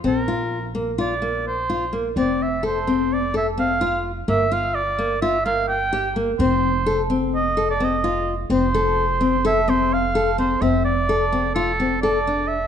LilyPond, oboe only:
\new Staff \with { instrumentName = "Oboe" } { \time 9/8 \key f \major \tempo 4. = 85 bes'4. r8 d''4 c''4 r8 | d''8 e''8 c''4 d''8 e''8 f''4 r8 | e''8 f''8 d''4 e''8 f''8 g''4 r8 | c''4. r8 ees''8. d''16 ees''4 r8 |
c''2 e''8 c''8 f''4 c''8 | e''8 d''4. a'4 d''4 e''8 | }